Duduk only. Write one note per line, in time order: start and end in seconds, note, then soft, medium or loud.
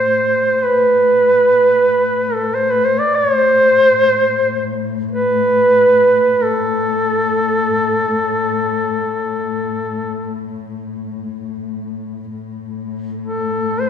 0.00 0.66 C5 medium
0.65 2.36 B4 medium
2.34 2.56 A4 medium
2.55 2.73 C5 medium
2.71 2.87 B4 medium
2.85 3.01 C5 medium
2.99 3.17 D5 medium
3.15 3.34 C#5 medium
3.34 4.80 C5 medium
5.12 6.45 B4 medium
6.44 10.43 A4 medium
13.22 13.82 A4 medium
13.81 13.90 C5 soft